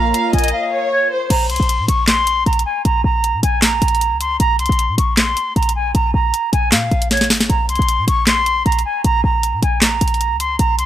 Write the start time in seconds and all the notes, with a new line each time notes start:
Already playing: A#1 A#3 F4 A#4 C#5 F5 A#5
0.14 F5, closed hi-hat
0.33 A#1 D#5 G#5, closed hi-hat
0.38 closed hi-hat
0.44 closed hi-hat
0.48 closed hi-hat
0.53 F5
0.72 C#5
0.92 C#5
1.11 C5
1.30 A#1 A#5, closed hi-hat, crash
1.50 C2 C6, closed hi-hat
1.56 A#1, closed hi-hat
1.63 closed hi-hat
1.69 closed hi-hat
1.79 A#2
1.88 A#1 C#6, closed hi-hat
2.07 C6, snare, clap, closed hi-hat
2.27 closed hi-hat
2.46 A#1 A#5, closed hi-hat
2.53 closed hi-hat
2.59 closed hi-hat
2.66 G#5
2.85 A#1 A#5, closed hi-hat
3.04 A#1 A#5
3.24 closed hi-hat
3.34 A#2
3.43 A#1 G#5, closed hi-hat
3.62 A#5, snare, clap, closed hi-hat
3.82 A#1, closed hi-hat
3.88 closed hi-hat
3.95 closed hi-hat
4.01 closed hi-hat
4.11 C#2
4.20 C6, closed hi-hat
4.40 A#1 A#5, closed hi-hat
4.59 C2 C6, closed hi-hat
4.66 A#1, closed hi-hat
4.72 closed hi-hat
4.79 closed hi-hat
4.89 A#2
4.98 A#1 C#6, closed hi-hat
5.17 C6, snare, clap, closed hi-hat
5.37 closed hi-hat
5.56 A#1 A#5, closed hi-hat
5.63 closed hi-hat
5.69 closed hi-hat
5.75 G#5
5.95 A#1 A#5, closed hi-hat
6.14 A#1 A#5
6.34 closed hi-hat
6.53 A#1 G#5, closed hi-hat
6.72 A#2 F5, snare, clap, closed hi-hat
6.91 A#1, closed hi-hat
7.02 closed hi-hat
7.11 C#5, snare, closed hi-hat
7.17 snare, closed hi-hat
7.24 closed hi-hat
7.30 G#1, snare, open hi-hat
7.40 snare
7.50 A#1 A#5, closed hi-hat
7.69 C2 C6, closed hi-hat
7.75 A#1, closed hi-hat
7.82 closed hi-hat
7.88 closed hi-hat
7.98 A#2
8.08 A#1 C#6, closed hi-hat
8.27 C6, snare, clap, closed hi-hat
8.46 closed hi-hat
8.66 A#1 A#5, closed hi-hat
8.72 closed hi-hat
8.79 closed hi-hat
8.85 G#5
9.04 A#1 A#5, closed hi-hat
9.24 A#1 A#5
9.43 closed hi-hat
9.53 A#2
9.62 A#1 G#5, closed hi-hat
9.82 A#5, snare, clap, closed hi-hat
10.01 A#1, closed hi-hat
10.08 closed hi-hat
10.14 closed hi-hat
10.21 closed hi-hat
10.31 C#2
10.40 C6, closed hi-hat
10.59 A#1 A#5, closed hi-hat
10.78 C2 C6, closed hi-hat